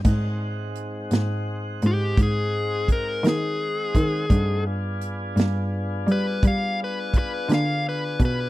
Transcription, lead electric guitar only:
X:1
M:12/8
L:1/8
Q:3/8=56
K:Ablyd
V:1 name="Lead electric guitar"
z4 z G A2 B A3- | A z4 =B f B B f B B |]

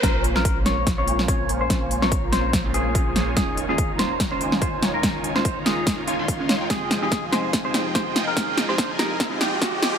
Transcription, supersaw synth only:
X:1
M:4/4
L:1/16
Q:"Swing 16ths" 1/4=144
K:Bbdor
V:1 name="Supersaw synth"
[B,Fcda]3 [B,Fcdb]6- [B,Fcdb] [B,Fcda]4 [B,Fcda]2 | [B,Fcd]3 [B,Fcdb]6- [B,Fcdb] [B,Fcda]4 [B,Fcda]2 | [E,EFda]3 [E,EFdb]6- [E,EFdb] [E,EFda]4 [E,EFda]2 | [E,EFda]3 [E,EFdb]6- [E,EFdb] [E,EFda] [E,EFdc']4 [E,EFdg] |
[Ae]3 [F,FAea]6- [F,FAea] [F,FAeg]4 [F,FAeg]2 | z3 [F,FAea]6- [F,FAea] [F,FAeg]4 [F,FAeg]2 |]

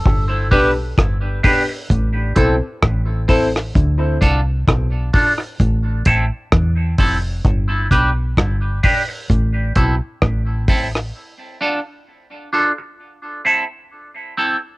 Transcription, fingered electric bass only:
X:1
M:4/4
L:1/16
Q:"Swing 16ths" 1/4=65
K:Am
V:1 name="Fingered electric bass" clef=bass
G,,,2 B,,,2 G,,,2 z2 A,,,2 B,,, z A,,,4 | D,,2 C,,2 B,,,2 z2 A,,,2 A,,, z E,,2 F,,,2 | G,,,2 B,,,2 G,,,2 z2 A,,,2 B,,, z A,,,4 | z16 |]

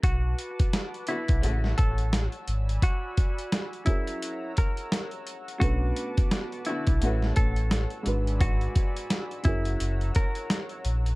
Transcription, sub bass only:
X:1
M:4/4
L:1/16
Q:"Swing 16ths" 1/4=86
K:Bdor
V:1 name="Sub bass" clef=bass
B,,,2 z4 z B,,, A,,,2 A,,,3 z G,,,2 | z16 | B,,,2 z4 z B,,, A,,,2 A,,,3 z G,,,2- | G,,,2 z4 F,,,2 F,,,2 z4 ^A,,,2 |]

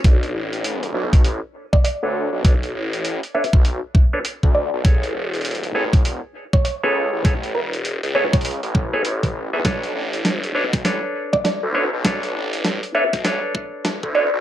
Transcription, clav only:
X:1
M:4/4
L:1/16
Q:"Swing 16ths" 1/4=100
K:Bdor
V:1 name="Clav"
[DBc]6 [DABc] z6 [DABc]3 | [DABc] z4 z [DABc] z4 [DABc] z4 | [GABc]6 [GABc] z6 [GABc]3 | [GABc] z4 z [GABc] z4 [GABc] z3 [GABe] |
[DABc]6 [DABc] z [DABc]6 [DABc] z | [DABc]6 [DABc] z [DABc]6 [DABc] z |]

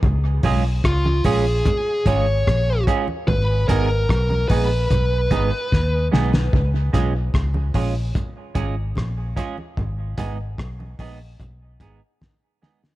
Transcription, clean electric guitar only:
X:1
M:4/4
L:1/16
Q:1/4=74
K:Dbmix
V:1 name="Clean electric guitar"
z2 [A,DFA] z3 [A,DFA] z3 [A,DFA] z3 [A,DFA] z | z2 [A,CEA] z3 [A,CEA] z3 [A,CEA] z3 [A,CEA] z | z2 [A,DFA] z3 [A,DFA] z3 [A,DFA] z3 [A,DFA] z | z2 [A,CEA] z3 [A,CEA] z3 [A,CEA] z3 [A,CEA] z |]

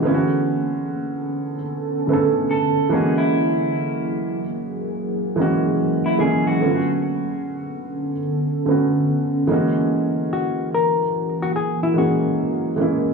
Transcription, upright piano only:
X:1
M:4/4
L:1/16
Q:"Swing 16ths" 1/4=73
K:Bdor
V:1 name="Upright piano"
[D,A,B,CEF]6- [D,A,B,CEF] z3 [C,D,A,B,CA]4 [E,G,^A,CF]2- | [E,G,^A,CF]4- [E,G,A,CF] z4 z [E,G,A,CF]4 [E,G,A,CE]2 | [D,A,B,C^EF]6- [D,A,B,CEF] z3 [D,A,B,CF]4 [=E,G,^A,CF]2- | [E,G,^A,CF]4- [E,G,A,CF] z4 z [E,G,A,CG]4 [E,G,A,CE]2 |]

